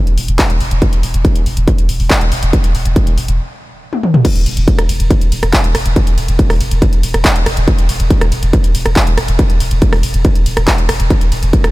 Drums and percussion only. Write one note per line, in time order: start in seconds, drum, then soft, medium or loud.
0.07 closed hi-hat medium
0.18 open hi-hat loud
0.28 closed hi-hat medium
0.39 kick loud
0.39 clap loud
0.39 closed hi-hat medium
0.50 closed hi-hat medium
0.61 open hi-hat loud
0.71 closed hi-hat medium
0.82 kick loud
0.82 closed hi-hat medium
0.93 closed hi-hat medium
1.03 open hi-hat loud
1.14 closed hi-hat medium
1.25 kick loud
1.25 closed hi-hat medium
1.36 closed hi-hat medium
1.46 open hi-hat loud
1.57 closed hi-hat medium
1.68 kick loud
1.68 closed hi-hat medium
1.78 closed hi-hat medium
1.89 open hi-hat loud
2.00 open hi-hat medium
2.10 kick loud
2.10 clap loud
2.10 closed hi-hat medium
2.21 closed hi-hat medium
2.32 open hi-hat loud
2.43 closed hi-hat medium
2.53 kick loud
2.53 closed hi-hat medium
2.64 closed hi-hat medium
2.75 open hi-hat loud
2.85 closed hi-hat medium
2.96 kick loud
2.96 closed hi-hat medium
3.07 closed hi-hat medium
3.18 open hi-hat loud
3.28 closed hi-hat medium
3.93 high tom medium
4.03 mid tom medium
4.14 mid tom medium
4.25 kick loud
4.25 closed hi-hat medium
4.25 crash loud
4.36 closed hi-hat medium
4.46 open hi-hat loud
4.46 ride medium
4.57 closed hi-hat medium
4.68 kick loud
4.68 closed hi-hat medium
4.79 cross-stick medium
4.79 closed hi-hat medium
4.89 open hi-hat loud
4.89 ride medium
5.00 closed hi-hat medium
5.11 kick loud
5.11 closed hi-hat medium
5.21 closed hi-hat medium
5.32 open hi-hat loud
5.32 ride medium
5.43 cross-stick medium
5.43 closed hi-hat medium
5.53 kick loud
5.53 clap loud
5.53 closed hi-hat medium
5.64 closed hi-hat medium
5.75 cross-stick medium
5.75 open hi-hat loud
5.75 ride medium
5.86 closed hi-hat medium
5.96 kick loud
5.96 closed hi-hat medium
6.07 closed hi-hat medium
6.18 open hi-hat loud
6.18 ride medium
6.28 closed hi-hat medium
6.39 kick loud
6.39 closed hi-hat medium
6.50 cross-stick medium
6.50 open hi-hat medium
6.61 open hi-hat loud
6.61 ride medium
6.71 closed hi-hat medium
6.82 kick loud
6.82 closed hi-hat medium
6.93 closed hi-hat medium
7.03 open hi-hat loud
7.03 ride medium
7.14 cross-stick medium
7.14 closed hi-hat medium
7.25 kick loud
7.25 clap loud
7.25 closed hi-hat medium
7.36 closed hi-hat medium
7.46 cross-stick medium
7.46 open hi-hat loud
7.46 ride medium
7.57 closed hi-hat medium
7.68 kick loud
7.68 closed hi-hat medium
7.78 closed hi-hat medium
7.89 open hi-hat loud
7.89 ride medium
8.00 closed hi-hat medium
8.10 kick loud
8.10 closed hi-hat medium
8.21 cross-stick medium
8.21 closed hi-hat medium
8.32 open hi-hat loud
8.32 ride medium
8.43 closed hi-hat medium
8.53 kick loud
8.53 closed hi-hat medium
8.64 closed hi-hat medium
8.75 open hi-hat loud
8.75 ride medium
8.86 cross-stick medium
8.86 closed hi-hat medium
8.96 kick loud
8.96 clap loud
8.96 closed hi-hat medium
9.07 closed hi-hat medium
9.18 cross-stick medium
9.18 open hi-hat loud
9.18 ride medium
9.28 closed hi-hat medium
9.39 kick loud
9.39 closed hi-hat medium
9.50 closed hi-hat medium
9.60 open hi-hat loud
9.60 ride medium
9.71 closed hi-hat medium
9.82 kick loud
9.82 closed hi-hat medium
9.93 cross-stick medium
9.93 open hi-hat medium
10.03 open hi-hat loud
10.03 ride medium
10.14 closed hi-hat medium
10.25 kick loud
10.25 closed hi-hat medium
10.35 closed hi-hat medium
10.46 open hi-hat loud
10.46 ride medium
10.57 cross-stick medium
10.57 closed hi-hat medium
10.68 kick loud
10.68 clap loud
10.68 closed hi-hat medium
10.78 closed hi-hat medium
10.89 cross-stick loud
10.89 open hi-hat loud
10.89 ride medium
11.00 closed hi-hat medium
11.10 kick loud
11.10 closed hi-hat medium
11.21 closed hi-hat medium
11.32 open hi-hat loud
11.32 ride medium
11.43 closed hi-hat medium
11.53 kick loud
11.53 closed hi-hat medium
11.64 cross-stick medium
11.64 closed hi-hat medium